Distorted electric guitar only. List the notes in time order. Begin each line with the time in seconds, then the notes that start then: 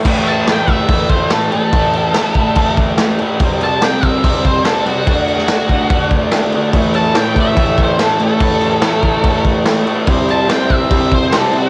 0.04 A2 E3 A3
0.47 A2 E3 A3
0.68 A2 E3 A3
0.90 A2 E3 A3
1.31 A2 E3 A3
1.52 A2 E3 A3
1.73 A2 E3 A3
2.16 A2 E3 A3
2.36 A2 E3 A3
2.57 A2 E3 A3
2.99 A2 E3 A3
3.20 A2 E3 A3
3.42 C3 G3 C4
3.82 C3 G3 C4
4.03 C3 G3 C4
4.23 C3 G3 C4
4.65 C3 G3 C4
4.85 C3 G3 C4
5.07 D3 A3 D4
5.49 D3 A3 D4
5.71 D3 A3 D4
5.91 D3 A3 D4
6.32 D3 A3 D4
6.54 D3 A3 D4
6.73 A2 E3 A3
7.16 A2 E3 A3
7.35 A2 E3 A3
7.55 A2 E3 A3
7.98 A2 E3 A3
8.19 A2 E3 A3
8.39 A2 E3 A3
8.82 A2 E3 A3
9.02 A2 E3 A3
9.23 A2 E3 A3
9.66 A2 E3 A3
9.86 A2 E3 A3
10.07 C3 G3 C4
10.48 C3 G3 C4
10.70 C3 G3 C4
10.91 C3 G3 C4
11.32 C3 G3 C4
11.53 C3 G3 C4